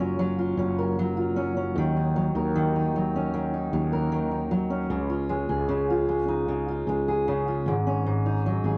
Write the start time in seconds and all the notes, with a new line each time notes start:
Already playing: F#1 F#3 F4 A#4
0.00 C#4
0.19 F#3
0.39 F4
0.57 F#1 C#4
0.79 A#4
0.99 F#3
1.17 F4
1.36 C#4
1.57 C#4
1.76 D#2 D#3
1.97 D#4
2.16 F#3
2.35 D#2 A#4
2.56 D#3
2.76 D#4
2.96 F#3
3.16 C#4
3.34 D#3
3.54 D#4
3.73 D#2 F#3
3.93 A#4
4.12 D#3
4.31 D#4
4.51 F#3
4.70 C#4
4.90 C#2 C#3
5.10 F4
5.29 G#3
5.49 C#2 G#4
5.69 C#3
5.90 F4
6.09 G#3
6.28 D#4
6.48 C#3
6.68 F4
6.87 C#2 G#3
7.08 G#4
7.28 C#3
7.48 F4
7.66 G#1 G#2
7.87 C#4
8.06 G#2
8.26 D#4
8.46 F#3
8.64 G#1 G#4